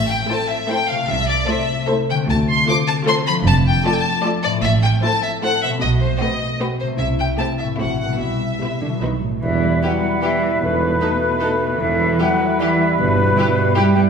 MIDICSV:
0, 0, Header, 1, 13, 480
1, 0, Start_track
1, 0, Tempo, 394997
1, 1315, Time_signature, 3, 2, 24, 8
1, 8502, Tempo, 402414
1, 12822, Tempo, 392670
1, 17076, End_track
2, 0, Start_track
2, 0, Title_t, "Violin section"
2, 0, Program_c, 0, 48
2, 112, Note_on_c, 0, 79, 72
2, 351, Note_off_c, 0, 79, 0
2, 360, Note_on_c, 0, 81, 70
2, 593, Note_on_c, 0, 76, 67
2, 597, Note_off_c, 0, 81, 0
2, 835, Note_off_c, 0, 76, 0
2, 847, Note_on_c, 0, 79, 79
2, 1082, Note_off_c, 0, 79, 0
2, 1088, Note_on_c, 0, 77, 70
2, 1317, Note_on_c, 0, 76, 88
2, 1321, Note_off_c, 0, 77, 0
2, 1557, Note_off_c, 0, 76, 0
2, 1562, Note_on_c, 0, 74, 66
2, 1798, Note_off_c, 0, 74, 0
2, 1807, Note_on_c, 0, 76, 71
2, 2289, Note_off_c, 0, 76, 0
2, 2547, Note_on_c, 0, 79, 67
2, 2638, Note_off_c, 0, 79, 0
2, 2785, Note_on_c, 0, 81, 73
2, 2876, Note_off_c, 0, 81, 0
2, 3034, Note_on_c, 0, 84, 72
2, 3253, Note_off_c, 0, 84, 0
2, 3265, Note_on_c, 0, 86, 89
2, 3357, Note_off_c, 0, 86, 0
2, 3494, Note_on_c, 0, 81, 77
2, 3588, Note_off_c, 0, 81, 0
2, 3738, Note_on_c, 0, 84, 84
2, 3831, Note_off_c, 0, 84, 0
2, 3968, Note_on_c, 0, 83, 81
2, 4062, Note_off_c, 0, 83, 0
2, 4209, Note_on_c, 0, 81, 95
2, 4303, Note_off_c, 0, 81, 0
2, 4455, Note_on_c, 0, 79, 72
2, 4675, Note_on_c, 0, 81, 74
2, 4680, Note_off_c, 0, 79, 0
2, 4758, Note_off_c, 0, 81, 0
2, 4769, Note_on_c, 0, 79, 68
2, 4846, Note_on_c, 0, 81, 70
2, 4848, Note_off_c, 0, 79, 0
2, 5152, Note_off_c, 0, 81, 0
2, 5387, Note_on_c, 0, 74, 82
2, 5482, Note_off_c, 0, 74, 0
2, 5634, Note_on_c, 0, 76, 92
2, 5728, Note_off_c, 0, 76, 0
2, 5868, Note_on_c, 0, 79, 75
2, 5963, Note_off_c, 0, 79, 0
2, 6112, Note_on_c, 0, 81, 76
2, 6343, Note_off_c, 0, 81, 0
2, 6350, Note_on_c, 0, 76, 69
2, 6444, Note_off_c, 0, 76, 0
2, 6597, Note_on_c, 0, 78, 84
2, 6826, Note_off_c, 0, 78, 0
2, 6835, Note_on_c, 0, 76, 72
2, 6929, Note_off_c, 0, 76, 0
2, 7068, Note_on_c, 0, 75, 86
2, 7163, Note_off_c, 0, 75, 0
2, 7297, Note_on_c, 0, 72, 65
2, 7527, Note_on_c, 0, 75, 61
2, 7534, Note_off_c, 0, 72, 0
2, 8013, Note_off_c, 0, 75, 0
2, 8262, Note_on_c, 0, 72, 56
2, 8358, Note_off_c, 0, 72, 0
2, 8490, Note_on_c, 0, 76, 74
2, 8586, Note_off_c, 0, 76, 0
2, 8734, Note_on_c, 0, 79, 63
2, 8829, Note_off_c, 0, 79, 0
2, 8966, Note_on_c, 0, 81, 63
2, 9062, Note_off_c, 0, 81, 0
2, 9210, Note_on_c, 0, 76, 54
2, 9305, Note_off_c, 0, 76, 0
2, 9451, Note_on_c, 0, 78, 52
2, 9680, Note_off_c, 0, 78, 0
2, 9694, Note_on_c, 0, 78, 51
2, 9932, Note_off_c, 0, 78, 0
2, 9935, Note_on_c, 0, 76, 49
2, 10892, Note_off_c, 0, 76, 0
2, 11894, Note_on_c, 0, 71, 40
2, 11989, Note_off_c, 0, 71, 0
2, 12346, Note_on_c, 0, 71, 39
2, 12442, Note_off_c, 0, 71, 0
2, 13296, Note_on_c, 0, 71, 39
2, 13394, Note_off_c, 0, 71, 0
2, 13768, Note_on_c, 0, 71, 40
2, 13866, Note_off_c, 0, 71, 0
2, 14753, Note_on_c, 0, 71, 45
2, 14851, Note_off_c, 0, 71, 0
2, 15233, Note_on_c, 0, 71, 43
2, 15331, Note_off_c, 0, 71, 0
2, 16204, Note_on_c, 0, 71, 52
2, 16302, Note_off_c, 0, 71, 0
2, 16678, Note_on_c, 0, 71, 51
2, 16776, Note_off_c, 0, 71, 0
2, 17076, End_track
3, 0, Start_track
3, 0, Title_t, "Flute"
3, 0, Program_c, 1, 73
3, 11394, Note_on_c, 1, 76, 61
3, 11838, Note_off_c, 1, 76, 0
3, 11888, Note_on_c, 1, 78, 59
3, 12259, Note_off_c, 1, 78, 0
3, 12266, Note_on_c, 1, 78, 45
3, 12337, Note_off_c, 1, 78, 0
3, 12348, Note_on_c, 1, 76, 64
3, 12818, Note_off_c, 1, 76, 0
3, 12825, Note_on_c, 1, 71, 72
3, 14241, Note_off_c, 1, 71, 0
3, 14275, Note_on_c, 1, 76, 70
3, 14745, Note_off_c, 1, 76, 0
3, 14759, Note_on_c, 1, 78, 66
3, 15224, Note_off_c, 1, 78, 0
3, 15232, Note_on_c, 1, 76, 72
3, 15702, Note_off_c, 1, 76, 0
3, 15708, Note_on_c, 1, 71, 81
3, 16644, Note_off_c, 1, 71, 0
3, 16663, Note_on_c, 1, 79, 84
3, 16736, Note_off_c, 1, 79, 0
3, 16888, Note_on_c, 1, 79, 77
3, 16962, Note_off_c, 1, 79, 0
3, 17076, End_track
4, 0, Start_track
4, 0, Title_t, "Oboe"
4, 0, Program_c, 2, 68
4, 11396, Note_on_c, 2, 71, 44
4, 14218, Note_off_c, 2, 71, 0
4, 14270, Note_on_c, 2, 71, 52
4, 17076, Note_off_c, 2, 71, 0
4, 17076, End_track
5, 0, Start_track
5, 0, Title_t, "Violin section"
5, 0, Program_c, 3, 48
5, 349, Note_on_c, 3, 72, 53
5, 352, Note_on_c, 3, 69, 52
5, 711, Note_off_c, 3, 72, 0
5, 712, Note_off_c, 3, 69, 0
5, 833, Note_on_c, 3, 72, 63
5, 837, Note_on_c, 3, 69, 53
5, 1192, Note_off_c, 3, 72, 0
5, 1194, Note_off_c, 3, 69, 0
5, 1796, Note_on_c, 3, 72, 54
5, 1803, Note_on_c, 3, 69, 60
5, 2160, Note_off_c, 3, 72, 0
5, 2163, Note_off_c, 3, 69, 0
5, 2288, Note_on_c, 3, 69, 64
5, 2288, Note_on_c, 3, 72, 64
5, 2643, Note_off_c, 3, 69, 0
5, 2643, Note_off_c, 3, 72, 0
5, 3259, Note_on_c, 3, 72, 63
5, 3262, Note_on_c, 3, 69, 54
5, 3609, Note_off_c, 3, 72, 0
5, 3611, Note_off_c, 3, 69, 0
5, 3727, Note_on_c, 3, 69, 72
5, 3734, Note_on_c, 3, 72, 70
5, 4081, Note_off_c, 3, 69, 0
5, 4085, Note_off_c, 3, 72, 0
5, 4681, Note_on_c, 3, 69, 60
5, 4686, Note_on_c, 3, 74, 60
5, 5032, Note_off_c, 3, 69, 0
5, 5034, Note_off_c, 3, 74, 0
5, 5156, Note_on_c, 3, 74, 68
5, 5161, Note_on_c, 3, 69, 68
5, 5508, Note_off_c, 3, 74, 0
5, 5510, Note_off_c, 3, 69, 0
5, 6125, Note_on_c, 3, 69, 59
5, 6127, Note_on_c, 3, 72, 57
5, 6471, Note_off_c, 3, 69, 0
5, 6472, Note_off_c, 3, 72, 0
5, 6594, Note_on_c, 3, 72, 61
5, 6597, Note_on_c, 3, 69, 62
5, 6948, Note_off_c, 3, 72, 0
5, 6949, Note_off_c, 3, 69, 0
5, 7542, Note_on_c, 3, 66, 55
5, 7544, Note_on_c, 3, 71, 47
5, 7898, Note_off_c, 3, 66, 0
5, 7899, Note_off_c, 3, 71, 0
5, 8019, Note_on_c, 3, 71, 53
5, 8025, Note_on_c, 3, 66, 50
5, 8376, Note_off_c, 3, 71, 0
5, 8380, Note_off_c, 3, 66, 0
5, 8978, Note_on_c, 3, 67, 46
5, 8985, Note_on_c, 3, 64, 40
5, 9333, Note_off_c, 3, 67, 0
5, 9337, Note_off_c, 3, 64, 0
5, 9444, Note_on_c, 3, 64, 39
5, 9446, Note_on_c, 3, 66, 40
5, 9808, Note_off_c, 3, 64, 0
5, 9809, Note_off_c, 3, 66, 0
5, 10439, Note_on_c, 3, 71, 34
5, 10444, Note_on_c, 3, 64, 34
5, 10796, Note_off_c, 3, 71, 0
5, 10798, Note_off_c, 3, 64, 0
5, 10909, Note_on_c, 3, 71, 38
5, 10913, Note_on_c, 3, 63, 36
5, 11273, Note_off_c, 3, 71, 0
5, 11275, Note_off_c, 3, 63, 0
5, 11885, Note_on_c, 3, 67, 38
5, 11980, Note_off_c, 3, 67, 0
5, 12355, Note_on_c, 3, 67, 45
5, 12450, Note_off_c, 3, 67, 0
5, 13297, Note_on_c, 3, 69, 41
5, 13395, Note_off_c, 3, 69, 0
5, 13791, Note_on_c, 3, 69, 49
5, 13889, Note_off_c, 3, 69, 0
5, 14748, Note_on_c, 3, 67, 43
5, 14845, Note_off_c, 3, 67, 0
5, 15253, Note_on_c, 3, 67, 49
5, 15350, Note_off_c, 3, 67, 0
5, 16201, Note_on_c, 3, 67, 50
5, 16299, Note_off_c, 3, 67, 0
5, 16667, Note_on_c, 3, 67, 59
5, 16764, Note_off_c, 3, 67, 0
5, 17076, End_track
6, 0, Start_track
6, 0, Title_t, "Clarinet"
6, 0, Program_c, 4, 71
6, 11409, Note_on_c, 4, 64, 43
6, 12840, Note_on_c, 4, 63, 45
6, 12858, Note_off_c, 4, 64, 0
6, 14269, Note_off_c, 4, 63, 0
6, 14276, Note_on_c, 4, 64, 50
6, 17076, Note_off_c, 4, 64, 0
6, 17076, End_track
7, 0, Start_track
7, 0, Title_t, "Viola section"
7, 0, Program_c, 5, 48
7, 342, Note_on_c, 5, 57, 51
7, 345, Note_on_c, 5, 64, 55
7, 707, Note_off_c, 5, 57, 0
7, 709, Note_off_c, 5, 64, 0
7, 831, Note_on_c, 5, 64, 49
7, 834, Note_on_c, 5, 57, 46
7, 1191, Note_off_c, 5, 64, 0
7, 1192, Note_off_c, 5, 57, 0
7, 1802, Note_on_c, 5, 57, 58
7, 1803, Note_on_c, 5, 64, 50
7, 2163, Note_off_c, 5, 57, 0
7, 2163, Note_off_c, 5, 64, 0
7, 2290, Note_on_c, 5, 64, 56
7, 2291, Note_on_c, 5, 57, 52
7, 2644, Note_off_c, 5, 57, 0
7, 2644, Note_off_c, 5, 64, 0
7, 3240, Note_on_c, 5, 57, 60
7, 3242, Note_on_c, 5, 65, 59
7, 3599, Note_off_c, 5, 57, 0
7, 3601, Note_off_c, 5, 65, 0
7, 3718, Note_on_c, 5, 65, 52
7, 3720, Note_on_c, 5, 57, 60
7, 4076, Note_off_c, 5, 65, 0
7, 4077, Note_off_c, 5, 57, 0
7, 4684, Note_on_c, 5, 57, 64
7, 4685, Note_on_c, 5, 65, 62
7, 5033, Note_off_c, 5, 57, 0
7, 5034, Note_off_c, 5, 65, 0
7, 5151, Note_on_c, 5, 57, 55
7, 5151, Note_on_c, 5, 65, 51
7, 5505, Note_off_c, 5, 57, 0
7, 5505, Note_off_c, 5, 65, 0
7, 6112, Note_on_c, 5, 57, 57
7, 6115, Note_on_c, 5, 64, 60
7, 6464, Note_off_c, 5, 57, 0
7, 6466, Note_off_c, 5, 64, 0
7, 6578, Note_on_c, 5, 57, 49
7, 6582, Note_on_c, 5, 64, 53
7, 6939, Note_off_c, 5, 57, 0
7, 6941, Note_off_c, 5, 64, 0
7, 7540, Note_on_c, 5, 57, 52
7, 7542, Note_on_c, 5, 60, 47
7, 7897, Note_off_c, 5, 57, 0
7, 7898, Note_off_c, 5, 60, 0
7, 8019, Note_on_c, 5, 57, 47
7, 8021, Note_on_c, 5, 60, 47
7, 8377, Note_off_c, 5, 57, 0
7, 8378, Note_off_c, 5, 60, 0
7, 8969, Note_on_c, 5, 60, 43
7, 8975, Note_on_c, 5, 57, 43
7, 9328, Note_off_c, 5, 60, 0
7, 9331, Note_off_c, 5, 57, 0
7, 9445, Note_on_c, 5, 60, 34
7, 9448, Note_on_c, 5, 57, 35
7, 9809, Note_off_c, 5, 60, 0
7, 9811, Note_off_c, 5, 57, 0
7, 10427, Note_on_c, 5, 55, 31
7, 10429, Note_on_c, 5, 59, 30
7, 10789, Note_off_c, 5, 55, 0
7, 10790, Note_off_c, 5, 59, 0
7, 10920, Note_on_c, 5, 54, 31
7, 10920, Note_on_c, 5, 59, 30
7, 11279, Note_off_c, 5, 54, 0
7, 11279, Note_off_c, 5, 59, 0
7, 11883, Note_on_c, 5, 64, 38
7, 11979, Note_off_c, 5, 64, 0
7, 12353, Note_on_c, 5, 64, 36
7, 12448, Note_off_c, 5, 64, 0
7, 13299, Note_on_c, 5, 63, 43
7, 13397, Note_off_c, 5, 63, 0
7, 13784, Note_on_c, 5, 63, 39
7, 13882, Note_off_c, 5, 63, 0
7, 14751, Note_on_c, 5, 64, 42
7, 14849, Note_off_c, 5, 64, 0
7, 15240, Note_on_c, 5, 64, 43
7, 15337, Note_off_c, 5, 64, 0
7, 16188, Note_on_c, 5, 64, 52
7, 16286, Note_off_c, 5, 64, 0
7, 16661, Note_on_c, 5, 64, 43
7, 16759, Note_off_c, 5, 64, 0
7, 17076, End_track
8, 0, Start_track
8, 0, Title_t, "Harp"
8, 0, Program_c, 6, 46
8, 0, Note_on_c, 6, 45, 48
8, 0, Note_on_c, 6, 57, 38
8, 0, Note_on_c, 6, 60, 36
8, 0, Note_on_c, 6, 69, 38
8, 0, Note_on_c, 6, 72, 37
8, 1101, Note_on_c, 6, 48, 49
8, 1144, Note_off_c, 6, 57, 0
8, 1158, Note_on_c, 6, 57, 42
8, 1198, Note_off_c, 6, 60, 0
8, 1213, Note_on_c, 6, 60, 41
8, 1229, Note_off_c, 6, 45, 0
8, 1254, Note_off_c, 6, 69, 0
8, 1268, Note_on_c, 6, 69, 41
8, 2558, Note_on_c, 6, 50, 55
8, 2602, Note_off_c, 6, 57, 0
8, 2617, Note_on_c, 6, 57, 46
8, 2656, Note_off_c, 6, 60, 0
8, 2670, Note_on_c, 6, 60, 46
8, 2676, Note_off_c, 6, 48, 0
8, 2711, Note_off_c, 6, 69, 0
8, 2726, Note_on_c, 6, 69, 45
8, 3870, Note_off_c, 6, 72, 0
8, 3993, Note_on_c, 6, 53, 55
8, 4034, Note_off_c, 6, 57, 0
8, 4049, Note_on_c, 6, 57, 42
8, 4103, Note_on_c, 6, 62, 52
8, 4118, Note_off_c, 6, 50, 0
8, 4140, Note_off_c, 6, 69, 0
8, 4155, Note_on_c, 6, 69, 48
8, 4174, Note_off_c, 6, 60, 0
8, 5411, Note_on_c, 6, 45, 56
8, 5450, Note_off_c, 6, 57, 0
8, 5464, Note_on_c, 6, 57, 43
8, 5517, Note_on_c, 6, 60, 43
8, 5542, Note_off_c, 6, 53, 0
8, 5556, Note_off_c, 6, 69, 0
8, 5570, Note_on_c, 6, 69, 47
8, 5597, Note_off_c, 6, 62, 0
8, 6855, Note_on_c, 6, 47, 45
8, 6895, Note_off_c, 6, 57, 0
8, 6910, Note_on_c, 6, 57, 43
8, 6949, Note_off_c, 6, 60, 0
8, 6963, Note_on_c, 6, 60, 43
8, 6976, Note_off_c, 6, 45, 0
8, 7021, Note_on_c, 6, 66, 44
8, 8294, Note_on_c, 6, 48, 43
8, 8332, Note_off_c, 6, 57, 0
8, 8347, Note_on_c, 6, 57, 37
8, 8390, Note_off_c, 6, 60, 0
8, 8405, Note_on_c, 6, 60, 36
8, 8414, Note_off_c, 6, 47, 0
8, 8459, Note_on_c, 6, 64, 36
8, 8498, Note_off_c, 6, 66, 0
8, 9247, Note_on_c, 6, 45, 33
8, 9290, Note_off_c, 6, 57, 0
8, 9304, Note_on_c, 6, 57, 27
8, 9344, Note_off_c, 6, 60, 0
8, 9358, Note_on_c, 6, 60, 28
8, 9373, Note_off_c, 6, 48, 0
8, 9397, Note_off_c, 6, 64, 0
8, 9411, Note_on_c, 6, 64, 28
8, 9446, Note_off_c, 6, 69, 0
8, 9741, Note_on_c, 6, 47, 32
8, 9793, Note_on_c, 6, 55, 28
8, 9848, Note_on_c, 6, 59, 25
8, 9854, Note_off_c, 6, 45, 0
8, 9882, Note_off_c, 6, 57, 0
8, 9883, Note_off_c, 6, 64, 0
8, 9897, Note_on_c, 6, 64, 25
8, 9909, Note_off_c, 6, 60, 0
8, 10691, Note_off_c, 6, 47, 0
8, 10706, Note_on_c, 6, 47, 27
8, 10758, Note_on_c, 6, 54, 25
8, 10801, Note_off_c, 6, 59, 0
8, 10815, Note_on_c, 6, 59, 23
8, 10860, Note_off_c, 6, 55, 0
8, 10869, Note_on_c, 6, 63, 23
8, 10912, Note_off_c, 6, 64, 0
8, 11313, Note_off_c, 6, 47, 0
8, 11340, Note_off_c, 6, 54, 0
8, 11395, Note_off_c, 6, 63, 0
8, 11397, Note_on_c, 6, 40, 45
8, 11638, Note_on_c, 6, 55, 38
8, 11881, Note_on_c, 6, 64, 35
8, 12119, Note_on_c, 6, 71, 39
8, 12340, Note_off_c, 6, 64, 0
8, 12355, Note_on_c, 6, 64, 36
8, 12589, Note_off_c, 6, 59, 0
8, 12604, Note_on_c, 6, 59, 35
8, 12810, Note_off_c, 6, 40, 0
8, 12824, Note_on_c, 6, 40, 47
8, 12840, Note_off_c, 6, 55, 0
8, 12844, Note_off_c, 6, 64, 0
8, 13069, Note_on_c, 6, 57, 38
8, 13306, Note_on_c, 6, 63, 39
8, 13539, Note_off_c, 6, 71, 0
8, 13554, Note_on_c, 6, 71, 45
8, 13779, Note_off_c, 6, 63, 0
8, 13794, Note_on_c, 6, 63, 38
8, 14012, Note_off_c, 6, 59, 0
8, 14027, Note_on_c, 6, 59, 35
8, 14253, Note_off_c, 6, 40, 0
8, 14268, Note_on_c, 6, 40, 52
8, 14291, Note_off_c, 6, 57, 0
8, 14292, Note_off_c, 6, 63, 0
8, 14507, Note_on_c, 6, 55, 37
8, 14753, Note_on_c, 6, 64, 38
8, 14982, Note_off_c, 6, 71, 0
8, 14997, Note_on_c, 6, 71, 45
8, 15220, Note_off_c, 6, 64, 0
8, 15234, Note_on_c, 6, 64, 43
8, 15463, Note_off_c, 6, 59, 0
8, 15478, Note_on_c, 6, 59, 39
8, 15715, Note_on_c, 6, 43, 55
8, 15731, Note_off_c, 6, 40, 0
8, 15938, Note_off_c, 6, 55, 0
8, 15953, Note_on_c, 6, 55, 41
8, 16168, Note_off_c, 6, 64, 0
8, 16183, Note_on_c, 6, 64, 42
8, 16414, Note_off_c, 6, 71, 0
8, 16428, Note_on_c, 6, 71, 51
8, 16655, Note_off_c, 6, 64, 0
8, 16670, Note_on_c, 6, 64, 51
8, 16896, Note_off_c, 6, 59, 0
8, 16911, Note_on_c, 6, 59, 46
8, 17076, Note_off_c, 6, 43, 0
8, 17076, Note_off_c, 6, 55, 0
8, 17076, Note_off_c, 6, 59, 0
8, 17076, Note_off_c, 6, 64, 0
8, 17076, Note_off_c, 6, 71, 0
8, 17076, End_track
9, 0, Start_track
9, 0, Title_t, "French horn section"
9, 0, Program_c, 7, 60
9, 11893, Note_on_c, 7, 59, 40
9, 11894, Note_on_c, 7, 55, 39
9, 12059, Note_off_c, 7, 59, 0
9, 12060, Note_off_c, 7, 55, 0
9, 12345, Note_on_c, 7, 55, 42
9, 12346, Note_on_c, 7, 59, 37
9, 12516, Note_off_c, 7, 55, 0
9, 12517, Note_off_c, 7, 59, 0
9, 13312, Note_on_c, 7, 57, 46
9, 13312, Note_on_c, 7, 63, 44
9, 13483, Note_off_c, 7, 57, 0
9, 13484, Note_off_c, 7, 63, 0
9, 13781, Note_on_c, 7, 57, 44
9, 13785, Note_on_c, 7, 63, 44
9, 13956, Note_off_c, 7, 57, 0
9, 13959, Note_off_c, 7, 63, 0
9, 14745, Note_on_c, 7, 55, 44
9, 14761, Note_on_c, 7, 64, 49
9, 14920, Note_off_c, 7, 55, 0
9, 14932, Note_off_c, 7, 64, 0
9, 15223, Note_on_c, 7, 55, 49
9, 15231, Note_on_c, 7, 64, 53
9, 15398, Note_off_c, 7, 55, 0
9, 15404, Note_off_c, 7, 64, 0
9, 16190, Note_on_c, 7, 64, 52
9, 16199, Note_on_c, 7, 55, 50
9, 16361, Note_off_c, 7, 64, 0
9, 16368, Note_off_c, 7, 55, 0
9, 16659, Note_on_c, 7, 64, 53
9, 16661, Note_on_c, 7, 55, 57
9, 16831, Note_off_c, 7, 64, 0
9, 16833, Note_off_c, 7, 55, 0
9, 17076, End_track
10, 0, Start_track
10, 0, Title_t, "Bassoon"
10, 0, Program_c, 8, 70
10, 11414, Note_on_c, 8, 55, 42
10, 12833, Note_on_c, 8, 57, 51
10, 12851, Note_off_c, 8, 55, 0
10, 15232, Note_on_c, 8, 55, 52
10, 15251, Note_off_c, 8, 57, 0
10, 17076, Note_off_c, 8, 55, 0
10, 17076, End_track
11, 0, Start_track
11, 0, Title_t, "Cello section"
11, 0, Program_c, 10, 48
11, 0, Note_on_c, 10, 45, 65
11, 247, Note_off_c, 10, 45, 0
11, 1314, Note_on_c, 10, 36, 65
11, 1697, Note_off_c, 10, 36, 0
11, 2768, Note_on_c, 10, 38, 75
11, 3144, Note_off_c, 10, 38, 0
11, 4195, Note_on_c, 10, 41, 73
11, 4574, Note_off_c, 10, 41, 0
11, 5621, Note_on_c, 10, 45, 73
11, 6001, Note_off_c, 10, 45, 0
11, 7061, Note_on_c, 10, 47, 62
11, 7440, Note_off_c, 10, 47, 0
11, 8490, Note_on_c, 10, 48, 51
11, 8870, Note_off_c, 10, 48, 0
11, 9447, Note_on_c, 10, 45, 42
11, 9832, Note_off_c, 10, 45, 0
11, 9928, Note_on_c, 10, 47, 41
11, 10318, Note_off_c, 10, 47, 0
11, 10420, Note_on_c, 10, 47, 38
11, 10516, Note_off_c, 10, 47, 0
11, 10664, Note_on_c, 10, 50, 43
11, 10760, Note_off_c, 10, 50, 0
11, 10909, Note_on_c, 10, 51, 33
11, 11004, Note_off_c, 10, 51, 0
11, 11150, Note_on_c, 10, 45, 33
11, 11390, Note_off_c, 10, 45, 0
11, 11397, Note_on_c, 10, 52, 49
11, 11840, Note_off_c, 10, 52, 0
11, 11870, Note_on_c, 10, 54, 51
11, 12335, Note_off_c, 10, 54, 0
11, 12343, Note_on_c, 10, 52, 53
11, 12809, Note_off_c, 10, 52, 0
11, 12810, Note_on_c, 10, 47, 49
11, 14234, Note_off_c, 10, 47, 0
11, 14264, Note_on_c, 10, 52, 59
11, 14742, Note_on_c, 10, 54, 67
11, 14749, Note_off_c, 10, 52, 0
11, 15228, Note_off_c, 10, 54, 0
11, 15228, Note_on_c, 10, 52, 57
11, 15699, Note_on_c, 10, 47, 61
11, 15700, Note_off_c, 10, 52, 0
11, 16639, Note_off_c, 10, 47, 0
11, 16661, Note_on_c, 10, 55, 75
11, 16874, Note_off_c, 10, 55, 0
11, 16889, Note_on_c, 10, 55, 70
11, 16986, Note_off_c, 10, 55, 0
11, 17076, End_track
12, 0, Start_track
12, 0, Title_t, "Double bass section"
12, 0, Program_c, 11, 48
12, 0, Note_on_c, 11, 33, 63
12, 244, Note_off_c, 11, 33, 0
12, 1321, Note_on_c, 11, 36, 69
12, 1701, Note_off_c, 11, 36, 0
12, 2770, Note_on_c, 11, 38, 70
12, 3145, Note_off_c, 11, 38, 0
12, 4203, Note_on_c, 11, 29, 74
12, 4579, Note_off_c, 11, 29, 0
12, 5621, Note_on_c, 11, 33, 67
12, 6001, Note_off_c, 11, 33, 0
12, 7067, Note_on_c, 11, 35, 66
12, 7443, Note_off_c, 11, 35, 0
12, 8502, Note_on_c, 11, 36, 55
12, 8876, Note_off_c, 11, 36, 0
12, 9461, Note_on_c, 11, 33, 45
12, 9840, Note_off_c, 11, 33, 0
12, 9936, Note_on_c, 11, 35, 44
12, 10322, Note_off_c, 11, 35, 0
12, 10909, Note_on_c, 11, 35, 35
12, 11295, Note_off_c, 11, 35, 0
12, 11403, Note_on_c, 11, 40, 49
12, 11797, Note_off_c, 11, 40, 0
12, 12827, Note_on_c, 11, 40, 53
12, 13224, Note_off_c, 11, 40, 0
12, 14265, Note_on_c, 11, 40, 53
12, 14669, Note_off_c, 11, 40, 0
12, 15712, Note_on_c, 11, 43, 56
12, 16110, Note_off_c, 11, 43, 0
12, 17076, End_track
13, 0, Start_track
13, 0, Title_t, "Tuba"
13, 0, Program_c, 12, 58
13, 11397, Note_on_c, 12, 28, 53
13, 11794, Note_off_c, 12, 28, 0
13, 12822, Note_on_c, 12, 28, 53
13, 13222, Note_off_c, 12, 28, 0
13, 14266, Note_on_c, 12, 28, 55
13, 14670, Note_off_c, 12, 28, 0
13, 15713, Note_on_c, 12, 31, 61
13, 16110, Note_off_c, 12, 31, 0
13, 17076, End_track
0, 0, End_of_file